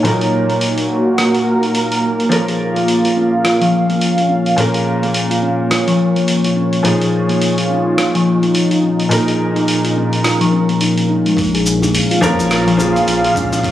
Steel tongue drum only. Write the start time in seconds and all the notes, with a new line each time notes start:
2.31 A#3
2.48 G#4
2.76 A#3
3.05 F4
3.17 C#4
3.44 F4
3.61 F3
3.89 A#3
4.17 F4
4.29 C#4
4.57 A#3
4.74 G#4
5.02 A#3
5.31 F4
5.42 C#4
5.71 F4
5.88 F3
6.16 A#3
6.45 F4
6.56 C#4
6.84 A#3
7.01 G#4
7.30 A#3
7.58 F4
7.70 C#4
7.98 F4
8.15 F3
8.43 A#3
8.71 F4
8.83 C#4
9.11 A#3
9.28 G#4
9.56 A#3
9.84 F4
9.96 C#4
10.24 F4
10.41 F3
10.52 C#4
10.69 A#3
10.81 D#4
10.98 C#4
11.09 D#4
11.26 G#3
11.38 A#3
11.54 G#4
11.82 A#3
12.11 F4
12.22 C#4
12.51 F4
12.67 F3
12.96 A#3
13.24 F4
13.35 C#4
13.64 A#3